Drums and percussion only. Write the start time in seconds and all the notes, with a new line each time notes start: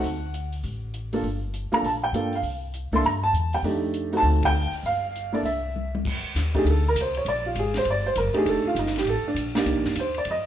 0.04 open hi-hat
0.34 closed hi-hat
0.52 open hi-hat
0.64 open hi-hat
0.94 closed hi-hat
1.13 open hi-hat
1.24 open hi-hat
1.54 closed hi-hat
1.73 open hi-hat
1.84 open hi-hat
2.14 closed hi-hat
2.33 open hi-hat
2.43 open hi-hat
2.74 closed hi-hat
2.92 open hi-hat
3.04 open hi-hat
3.35 closed hi-hat
3.53 open hi-hat
3.64 open hi-hat
3.94 closed hi-hat
4.13 open hi-hat
4.24 open hi-hat
4.43 kick, ride
4.73 open hi-hat
4.85 open hi-hat
5.16 closed hi-hat
5.35 open hi-hat
5.46 open hi-hat
5.76 mid tom
5.95 mid tom
6.05 kick, crash
6.36 snare, hi-hat pedal, ride
6.55 kick, ride
6.66 ride
6.96 hi-hat pedal, ride
7.14 ride
7.26 ride
7.55 hi-hat pedal, ride
7.74 snare, ride
7.85 ride
8.16 hi-hat pedal, ride
8.34 ride
8.46 ride
8.76 hi-hat pedal, ride
8.86 snare
8.96 snare, ride
9.07 ride
9.36 hi-hat pedal, ride
9.55 snare, ride
9.66 ride
9.85 snare
9.95 hi-hat pedal, ride
10.14 ride
10.25 ride